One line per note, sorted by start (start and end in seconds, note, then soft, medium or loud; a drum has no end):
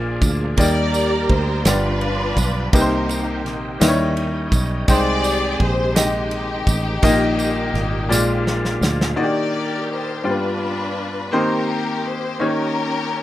0.00 0.18 A#1 medium
0.00 0.53 A#2 medium
0.00 0.57 F3 medium
0.00 0.45 A#3 medium
0.00 0.55 A#3 medium
0.00 0.57 D4 medium
0.00 0.45 F4 medium
0.00 0.45 G#4 medium
0.00 0.58 G#4 medium
0.00 0.49 D5 medium
0.21 0.55 D2 medium
0.21 kick loud
0.21 ride soft
0.21 tambourine soft
0.56 1.25 D#2 medium
0.56 1.62 G3 medium
0.56 1.65 A#3 soft
0.56 1.53 A#3 medium
0.56 1.65 D#4 medium
0.56 1.53 D#4 medium
0.56 0.64 F#4 soft
0.56 1.54 G4 medium
0.56 1.62 G4 medium
0.56 1.62 A#4 medium
0.56 1.65 D5 soft
0.56 1.54 D5 medium
0.56 1.26 D5 loud
0.56 kick loud
0.56 ride medium
0.61 1.68 G4 medium
0.61 tambourine medium
0.94 ride soft
0.94 tambourine soft
1.29 1.63 D2 medium
1.29 1.66 C5 medium
1.29 kick medium
1.29 ride soft
1.63 2.33 G1 medium
1.63 2.69 G2 medium
1.63 2.72 F3 medium
1.63 2.72 B3 medium
1.63 2.61 B3 medium
1.63 2.72 D4 soft
1.63 2.70 D4 medium
1.63 1.71 F4 soft
1.63 2.61 F4 medium
1.63 2.61 G4 medium
1.63 2.74 B4 medium
1.63 2.61 D5 medium
1.63 snare loud
1.63 ride medium
1.63 tambourine medium
1.68 2.70 F4 medium
1.68 2.71 G4 medium
2.01 ride soft
2.37 2.70 B1 medium
2.37 kick medium
2.37 ride soft
2.37 tambourine medium
2.71 3.45 C2 loud
2.71 3.77 C3 medium
2.71 3.80 D#3 medium
2.71 3.80 A#3 medium
2.71 3.68 A#3 medium
2.71 3.80 C4 soft
2.71 3.69 D#4 medium
2.71 3.77 D#4 medium
2.71 3.80 G4 medium
2.71 3.68 G4 medium
2.71 3.77 G4 medium
2.71 3.50 A#4 medium
2.71 2.80 B4 medium
2.71 kick loud
2.71 ride medium
2.75 tambourine medium
2.81 3.72 C5 medium
3.09 ride soft
3.09 tambourine soft
3.45 3.78 A#1 medium
3.45 snare soft
3.45 ride soft
3.80 4.48 D#2 loud
3.80 4.84 D#3 medium
3.80 4.87 D#3 medium
3.80 4.75 G3 medium
3.80 4.89 C#4 medium
3.80 4.76 D#4 medium
3.80 4.76 E4 medium
3.80 4.88 G4 medium
3.80 3.87 B4 medium
3.80 4.88 D#5 medium
3.80 snare loud
3.80 ride medium
3.80 tambourine medium
3.88 4.79 C#5 medium
4.17 ride soft
4.52 4.85 B1 medium
4.52 kick medium
4.52 ride soft
4.52 tambourine soft
4.88 5.56 C2 loud
4.88 5.91 C3 medium
4.88 6.99 D#3 medium
4.88 6.99 G#3 medium
4.88 5.83 G#3 medium
4.88 6.99 C4 medium
4.88 5.83 D#4 medium
4.88 5.92 G4 medium
4.88 5.93 G#4 medium
4.88 5.84 C5 medium
4.88 6.99 G5 medium
4.88 5.84 G5 medium
4.88 kick loud
4.88 ride medium
4.88 tambourine medium
4.92 5.58 D5 loud
5.24 ride soft
5.24 tambourine soft
5.60 6.63 A#1 medium
5.60 kick medium
5.60 ride soft
5.65 5.98 C5 loud
5.95 6.90 G#3 medium
5.95 6.91 D#4 medium
5.95 6.91 G4 medium
5.95 6.91 D#5 medium
5.95 snare loud
5.95 ride medium
5.95 tambourine medium
5.99 8.80 D#4 medium
5.99 8.84 G4 medium
6.31 ride soft
6.67 7.00 A1 medium
6.67 kick medium
6.67 ride soft
6.67 tambourine medium
7.01 7.70 A#1 loud
7.01 8.07 A#2 medium
7.01 8.10 D#3 medium
7.01 8.10 G3 medium
7.01 7.98 A#3 loud
7.01 8.08 A#3 medium
7.01 7.98 D#4 medium
7.01 7.09 F4 medium
7.01 7.99 G4 medium
7.01 7.99 D#5 loud
7.01 kick loud
7.01 ride medium
7.01 tambourine medium
7.08 8.13 G4 medium
7.39 ride soft
7.39 tambourine soft
7.74 8.09 G#1 medium
7.74 snare soft
7.74 ride soft
8.09 8.77 A#1 loud
8.09 9.13 A#2 medium
8.09 9.18 F3 medium
8.09 9.18 G#3 medium
8.09 9.06 G#3 medium
8.09 9.05 A#3 medium
8.09 9.17 A#3 medium
8.09 9.05 F4 medium
8.09 9.18 F4 medium
8.09 9.06 D5 medium
8.09 snare medium
8.09 tambourine medium
8.47 snare medium
8.65 snare medium
8.81 9.15 D2 medium
8.81 snare loud
8.81 tambourine medium
9.01 snare medium
9.16 10.21 D#3 medium
9.16 10.12 A#3 medium
9.16 10.12 D4 medium
9.16 10.12 D#4 medium
9.16 9.24 F#4 medium
9.16 10.13 D5 medium
9.21 10.23 G4 medium
9.21 10.16 G4 medium
9.21 10.23 A#4 medium
9.21 9.87 D5 medium
9.93 10.27 C5 medium
10.24 11.28 G2 medium
10.24 10.31 A#3 soft
10.24 11.20 D4 medium
10.24 11.20 F4 medium
10.24 11.20 G4 medium
10.24 11.20 D5 medium
10.28 11.23 B3 medium
10.28 11.31 D4 medium
10.28 11.30 F4 medium
10.28 11.35 B4 medium
11.32 12.36 D#3 medium
11.32 12.28 A#3 medium
11.32 12.28 C4 medium
11.32 12.28 D#4 medium
11.32 12.28 G4 medium
11.32 12.28 C5 medium
11.36 12.38 G4 medium
11.36 12.06 A#4 medium
12.08 12.42 C5 medium
12.39 13.23 D#3 medium
12.39 13.23 A#3 medium
12.39 13.23 C#4 medium
12.39 13.23 D#4 medium
12.39 13.23 G4 medium
12.39 13.23 C#5 medium
12.44 13.23 C#4 medium
12.44 13.23 G4 medium
12.44 13.23 A#4 loud